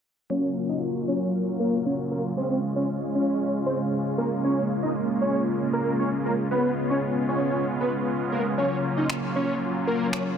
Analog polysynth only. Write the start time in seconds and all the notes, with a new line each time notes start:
0.30 F#3 A#3 C#4 F4
2.37 G#3 C#4 F4
4.18 G#3 A#3 C#4 F4
6.51 G#3 B3 C#4 F4
8.57 F#3 A#3 C#4 F4